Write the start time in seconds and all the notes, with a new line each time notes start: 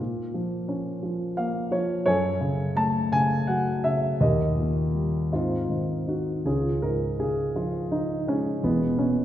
0.00 A#2
0.34 F3
0.68 C#4
1.03 F3
1.37 A#3 F5
1.71 F3 C#5
2.06 F#2 A4 C#5 G#5
2.41 C#3
2.75 A3 A5
3.12 C#3 G#5
3.47 F#3 F#5
3.84 C#3 E5
4.21 D#2 G4 A#4 D#5
4.58 A#2
4.95 G3
5.32 G#2 C4 F4
5.69 D#3
6.07 D#4 F#4
6.45 C#2 C#4 F4 G#4
6.82 G#2 A#4
7.19 C#3 G#4
7.55 F3 F4
7.91 D#4
8.28 G#3 C#4
8.63 E1 E2 E3 G#3 B3
8.98 B2 C#4